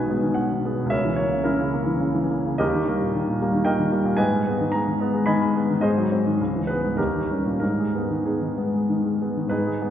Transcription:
Already playing: B1 B2 D#3 G#3 B3 D#4 G#4 B4 D#5 G#5
0.10 G#3 B3
0.23 D#3
0.34 B2 F#5
0.51 D#3
0.65 G#3 B3
0.79 B2
0.86 C#2 E5
0.91 A#4 C#5
1.05 E3
1.16 A#3 C#5
1.32 C#3
1.44 E3 C#4 E4 A#4
1.60 C#3
1.73 A#3
1.86 E3
2.00 C#3
2.15 E3
2.30 A#3
2.45 C#3
2.58 D#2 G4 A#4 D#5
2.75 D#3
2.88 G3 A#3
3.02 A#2
3.15 D#3
3.29 A#2
3.41 G3 A#3
3.54 D#3
3.65 A#2 A#4 D#5 G5
3.80 D#3
3.92 G3 A#3
4.04 A#2
4.17 G#2 B4 D#5 G#5
4.32 G#3
4.47 G#3 B3
4.61 D#3
4.72 G#3 A#5
4.88 D#3
5.00 G#3 B3
5.14 G#3
5.26 D#3 D#5 G#5 B5
5.42 G#3
5.56 G#3 B3
5.70 D#3
5.81 G#2 G#4 C5 D#5
5.98 F#3
6.12 G#3 C4
6.27 D#3
6.41 C#2
6.56 E3
6.67 G#3 B3 B4
6.84 G#2
6.97 D#2 D#4 G4 A#4
7.15 D#3
7.31 G3 C#4
7.46 A#2
7.60 G#2 D#4 A#4
7.79 G#3
7.95 G#3 B3
8.11 D#3
8.25 G#3 B3 D#4 G#4
8.42 D#3
8.57 G#3 B3
8.74 G#3
8.89 D#3
9.05 G#3
9.21 G#3 B3
9.37 D#3
9.48 G#2 D#4 G#4 B4
9.67 G#3
9.82 G#3 B3

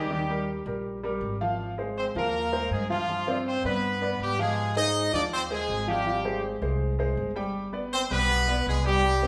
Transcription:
Already playing: D#2 G3 G4
0.11 D#3 D#4 D#5
0.29 G3 G4 A#4
0.66 A#1 G3 G4 A#4
1.03 G3 G4 A#4
1.21 G#1
1.41 F3 F4 F5
1.78 G#3 G#4 C5
1.97 C4 C5
2.15 D#2 F3 A#3 F4 A#4 F5
2.52 G#3 G#4 C5
2.71 G2 G#3 G#4
2.90 F3 F4 F5
3.09 F3 F4 F5
3.27 C4 C5 D5
3.47 C4 C5
3.64 G2 B3 B4 D5
4.02 B3 B4 D5
4.20 G#2 G3 G4
4.39 F3 G#3 F4 G#4 F5
4.76 G#3 D#4 G#4 C5 D#5
5.13 D#2 F3 D4 F4 D5 F5
5.33 C4 C5
5.51 G#3 G#4 C5
5.68 G#1
5.87 F3 G3 F4 G4 F5
6.06 F3 F4 F5
6.25 G#3 G#4 C5
6.62 C2 G#3 G#4 C5
6.99 G#3 G#4 C5
7.17 G1
7.36 G3 G4 G5
7.73 B3 B4 D5
7.93 C4 C5
8.11 B1 G3 B3 G4 B4 G5
8.48 B3 B4 D5
8.67 C2 G#3 G#4
8.85 G3 G4 G5
9.03 G3 G4 G5
9.22 C4 C5 D#5

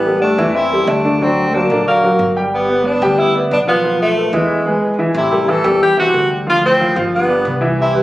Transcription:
Already playing: A1 G3 B3
0.06 G3 G4 A4
0.21 A3 D4
0.38 E2 E3 E4 E5
0.54 C4 E4
0.72 G3 G4 A4
0.86 D2 A3 D4
1.04 D3 D4 D5
1.19 D3 F#3 C4 D4 D5
1.52 F#3 A#3 D4 F#4 A#4
1.70 A#1 D3 D4 D5
1.85 F#3 A#3
2.04 F#3 F#4 A#4
2.19 G1
2.36 G3 G4 G5
2.51 G3 B3
2.69 B3 B4 D5
2.85 B3 D4
3.02 D2 G3 G4 G5
3.17 B3 E4
3.35 B3 B4 D5
3.51 B1 B3 D4
3.67 F3 B3 F4 F5
3.84 F3 F4 F5
4.00 F3 A3
4.17 A3 A4 B4
4.33 E2 E3 G#3 E4 E5
4.66 G#3 G#4 B4
4.99 E3 E4 E5
5.14 A1 C3 E4
5.32 G3 G4 A4
5.48 E3 E4 A4 E5
5.64 E2 G3 G4 A4
5.82 E3 G4
5.97 C3 E3 E4 F#4 E5
6.14 D2 G3 G4 A4
6.47 D3 F3 F4 F5
6.63 A2 C4
6.80 F3 F4 F5
6.96 G1 F3 F4 F5
7.14 G2 B3
7.28 B3 B4 D5
7.45 C2
7.61 E3 E4 E5
7.79 C3 E4
7.94 G3 G4 B4

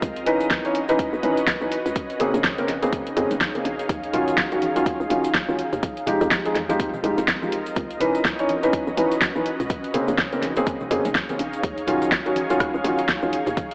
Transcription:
Already playing: D#5
0.02 C#2 C#4, kick, closed hi-hat, shaker
0.16 closed hi-hat, shaker
0.26 E3 C#4 D#4 B4, open hi-hat
0.40 closed hi-hat, shaker
0.48 F#4, kick, snare, closed hi-hat, shaker
0.53 B4
0.64 E3 C#4 D#4 C#5, closed hi-hat, shaker
0.75 open hi-hat
0.88 E3 C#4 D#4 B4, closed hi-hat, shaker
0.98 kick, closed hi-hat, shaker
1.13 B1, shaker
1.23 G#1 E3 C#4 D#4 B4, open hi-hat
1.37 closed hi-hat, shaker
1.47 kick, snare, closed hi-hat, shaker
1.61 B1 E3 C#4 D#4 B4, shaker
1.72 open hi-hat
1.86 C#2, closed hi-hat, shaker
1.96 D#4, kick, closed hi-hat, shaker
2.10 closed hi-hat, shaker
2.20 C#3 A#3 C4 G#4, open hi-hat
2.34 A#1, closed hi-hat, shaker
2.44 G#4, kick, snare, closed hi-hat, shaker
2.58 C#3 A#3 C4 A#4, closed hi-hat, shaker
2.68 A#1, snare, open hi-hat
2.82 C#3 A#3 C4 G#4 C#5 F5, closed hi-hat, shaker
2.93 kick, closed hi-hat, shaker
3.06 closed hi-hat, shaker
3.16 F2 C#3 A#3 C4 G#4, open hi-hat
3.31 F1, closed hi-hat, shaker
3.41 D#2, kick, snare, closed hi-hat, shaker
3.54 C#3 A#3 C4 G#4, closed hi-hat, shaker
3.65 A#1, open hi-hat
3.79 closed hi-hat, shaker
3.89 D#2, kick, closed hi-hat, high conga, shaker
4.04 closed hi-hat, shaker
4.13 D#3 F#3 C#4 F4, open hi-hat, low conga
4.28 closed hi-hat, high conga, shaker
4.37 kick, snare, closed hi-hat, shaker
4.51 D#3 F#3 C#4 F#4, closed hi-hat, shaker
4.62 open hi-hat, high conga
4.76 D#3 F#3 C#4 F4, closed hi-hat, shaker
4.86 kick, closed hi-hat, shaker
5.00 C#2, high conga, shaker
5.10 A#1 D#3 F#3 C#4 F4, open hi-hat
5.24 closed hi-hat, shaker
5.34 kick, snare, closed hi-hat, shaker
5.48 C#2 D#3 F#3 C#4 F4, high conga, shaker
5.59 open hi-hat
5.73 D#2, closed hi-hat, low conga, shaker
5.83 C4, kick, closed hi-hat, high conga, shaker
5.97 closed hi-hat, shaker
6.06 F3 G#3 D#4 G4, open hi-hat, low conga
6.21 F2, closed hi-hat, high conga, shaker
6.31 F4, kick, snare, closed hi-hat, shaker
6.45 F3 G#3 D#4 G#4, closed hi-hat, shaker
6.55 F2, snare, open hi-hat, high conga
6.69 F3 G#3 D#4 G4 A#4 D#5, closed hi-hat, shaker
6.80 kick, closed hi-hat, shaker
6.93 high conga, low conga, shaker
7.03 C2 F3 G#3 D#4 G4, open hi-hat
7.18 C2, closed hi-hat, shaker
7.28 kick, snare, closed hi-hat, shaker
7.42 F3 G#3 D#4 G4, high conga, shaker
7.52 open hi-hat
7.66 closed hi-hat, shaker
7.76 C#2 C#4, kick, closed hi-hat, high conga, shaker
7.91 closed hi-hat, shaker
8.00 E3 C#4 D#4 B4, open hi-hat, low conga
8.13 F#4, closed hi-hat, high conga, shaker
8.25 kick, snare, closed hi-hat, shaker
8.36 E3 C#4 D#4 B4 C#5, closed hi-hat, shaker
8.49 open hi-hat, high conga
8.63 E3 C#4 D#4 B4, closed hi-hat, shaker
8.72 kick, closed hi-hat, shaker
8.87 B1, high conga, shaker
8.97 G#1 E3 C#4 D#4 B4, open hi-hat
9.12 closed hi-hat, shaker
9.22 kick, snare, closed hi-hat, shaker
9.35 B1 E3 C#4 D#4 B4, high conga, shaker
9.46 open hi-hat
9.60 C#2, closed hi-hat, low conga, shaker
9.70 D#4, kick, closed hi-hat, high conga, shaker
9.84 G#4, closed hi-hat, shaker
9.94 C#3 A#3 C4 G#4, open hi-hat, low conga
10.08 A#1, closed hi-hat, high conga, shaker
10.18 kick, snare, closed hi-hat, shaker
10.32 C#3 A#3 C4 A#4, closed hi-hat, shaker
10.42 A#1, snare, open hi-hat, high conga
10.56 C#3 A#3 C4 G#4 C#5 F5, closed hi-hat, shaker
10.66 kick, closed hi-hat, shaker
10.80 high conga, low conga, shaker
10.90 F2 C#3 A#3 C4 G#4, open hi-hat
11.05 F1, closed hi-hat, shaker
11.15 D#2, kick, snare, closed hi-hat, shaker
11.29 C#3 A#3 C4 G#4, closed hi-hat, high conga, shaker
11.39 A#1, open hi-hat
11.53 closed hi-hat, shaker
11.63 D#2, kick, closed hi-hat, high conga, shaker
11.78 closed hi-hat, shaker
11.87 D#3 F#3 C#4 F4, open hi-hat, low conga
12.02 closed hi-hat, high conga, shaker
12.12 kick, snare, closed hi-hat, shaker
12.26 D#3 F#3 C#4 F#4, closed hi-hat, shaker
12.36 open hi-hat, high conga
12.50 D#3 F#3 C#4 F4, closed hi-hat, shaker
12.60 kick, cross-stick, closed hi-hat, shaker
12.74 C#2, high conga, shaker
12.84 A#1 D#3 F#3 C#4 F4, open hi-hat
12.98 closed hi-hat, shaker
13.08 kick, snare, closed hi-hat, shaker
13.22 C#2 D#3 F#3 C#4 F4, high conga, shaker
13.33 open hi-hat
13.46 D#2, closed hi-hat, low conga, shaker
13.57 F4, kick, closed hi-hat, high conga, shaker
13.71 closed hi-hat, shaker

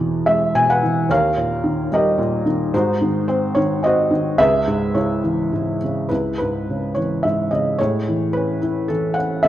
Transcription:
Already playing: E2 B2 E3
0.26 G#3 E5
0.55 B2 G#5
0.70 B4 F#5
0.83 E3
1.09 D#2 A#4 C#5 F5
1.37 A#2
1.64 D#3
1.92 G3 G4 A#4 D#5
2.18 A#2
2.46 D#3
2.74 G#2 D#4 F#4 C5
3.02 D#3
3.28 C4 C5
3.55 D#3 C#5
3.83 C4 F#4 C5 D#5
4.11 D#3
4.38 C#2 G#4 B4 E5
4.68 G#2
4.94 C#3 E4 G#4 C#5
5.24 E3
5.53 G#2
5.84 C#3
6.09 C#2 E4 B4
6.38 G#2 B4
6.70 C#3
6.95 E3 C#5
7.23 G#2 E5
7.51 C#3 D#5
7.78 A2 G#4 C#5
8.09 E3
8.33 C#4 B4
8.62 E4
8.88 E3 A4
9.14 F#5
9.18 C#4
9.43 D2 A4 E5

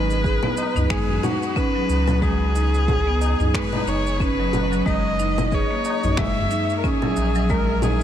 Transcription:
Already playing: G#1 B4
0.10 shaker
0.24 G#4, kick, shaker
0.43 B3, tabla tin, low conga
0.57 tabla na, shaker
0.75 C#2 D#4, tabla ge, shaker
0.90 G#1 G#3 G#4, finger snap, kick, shaker
1.08 tabla ge
1.23 D#4 F#4, low conga, shaker
1.42 shaker
1.56 C#4 B4, kick, shaker
1.75 F#3
1.89 C#2, tabla na, shaker
2.08 F#3, low conga, shaker
2.22 G#3 G#4, kick, tabla na, tabla tin, shaker
2.55 D#4, tabla tin, shaker
2.74 shaker
2.88 G#4, kick, low conga, shaker
3.07 B3, tabla tin
3.21 tabla na, shaker
3.40 C#2 D#4, tabla ge, shaker
3.54 G#3 B4, finger snap, kick, shaker
3.73 tabla na, low conga
3.86 F#1 D#4 C#5, shaker
4.07 shaker
4.20 C#4 B4, kick, shaker
4.39 F#3, tabla na
4.53 tabla na, low conga, shaker
4.72 F#3, shaker
4.86 F#1 G#3 D#5, kick, tabla na, tabla tin, shaker
5.19 D#4, tabla tin, shaker
5.38 low conga, shaker
5.52 G#4 C#5, kick, shaker
5.71 A#3, tabla tin
5.85 tabla na, shaker
6.03 A#1 D#4, tabla ge, shaker
6.17 F#1 G#3 E5, finger snap, kick, low conga, shaker
6.38 tabla ge
6.51 D#4, shaker
6.70 shaker
6.78 A#4
6.84 C#4 G#4, kick, shaker
7.02 F#3, low conga
7.16 A#1, tabla na, shaker
7.35 F#3, shaker
7.50 G#3 A#4, kick, tabla na, tabla tin, shaker
7.82 D#4 G#4, tabla tin, low conga, shaker

